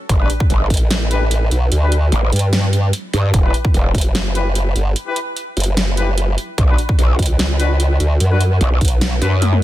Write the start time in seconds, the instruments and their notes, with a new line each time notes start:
0.09 wobble bass G1, kick, closed hi-hat
0.20 brass ensemble D4 G4 B4
0.30 closed hi-hat
0.40 kick
0.50 wobble bass G1, closed hi-hat
0.70 wobble bass A1, kick, closed hi-hat
0.74 closed hi-hat
0.77 closed hi-hat
0.91 snare, closed hi-hat
1.11 brass ensemble D4 G4 B4, closed hi-hat
1.31 closed hi-hat
1.51 wobble bass B1, closed hi-hat
1.72 wobble bass D2, closed hi-hat
1.82 brass ensemble D4 G4 B4
1.92 closed hi-hat
2.12 wobble bass A1, closed hi-hat
2.32 wobble bass G2, closed hi-hat
2.36 closed hi-hat
2.39 closed hi-hat
2.53 snare, closed hi-hat
2.73 closed hi-hat
2.93 closed hi-hat
3.13 wobble bass G2, closed hi-hat
3.34 wobble bass E1, kick, closed hi-hat
3.44 brass ensemble E4 G4 B4
3.54 closed hi-hat
3.65 kick
3.74 wobble bass E1, closed hi-hat
3.95 wobble bass F#1, kick, closed hi-hat
3.98 closed hi-hat
4.01 closed hi-hat
4.15 snare, closed hi-hat
4.35 brass ensemble E4 G4 B4, closed hi-hat
4.55 closed hi-hat
4.76 wobble bass G1, closed hi-hat
4.96 closed hi-hat
5.07 brass ensemble E4 G4 B4
5.16 closed hi-hat
5.37 closed hi-hat
5.57 wobble bass F#1, closed hi-hat
5.60 closed hi-hat
5.64 closed hi-hat
5.77 snare, closed hi-hat
5.97 brass ensemble E4 G4 B4, closed hi-hat
6.18 closed hi-hat
6.38 closed hi-hat
6.58 wobble bass B1, kick, closed hi-hat
6.69 brass ensemble D4 F#4 B4
6.78 closed hi-hat
6.89 kick
6.99 wobble bass B1, closed hi-hat
7.19 wobble bass C#2, kick, closed hi-hat
7.22 closed hi-hat
7.26 closed hi-hat
7.39 snare, closed hi-hat
7.59 brass ensemble D4 F#4 B4, closed hi-hat
7.80 closed hi-hat
8.00 wobble bass D2, closed hi-hat
8.20 wobble bass F#2, closed hi-hat
8.31 brass ensemble D4 F#4 B4
8.41 closed hi-hat
8.61 wobble bass B1, closed hi-hat
8.81 wobble bass B1, kick, closed hi-hat
8.85 closed hi-hat
8.88 closed hi-hat
9.01 snare, closed hi-hat
9.22 wobble bass F#2, brass ensemble D4 F#4 B4, closed hi-hat
9.42 closed hi-hat, high tom
9.53 high tom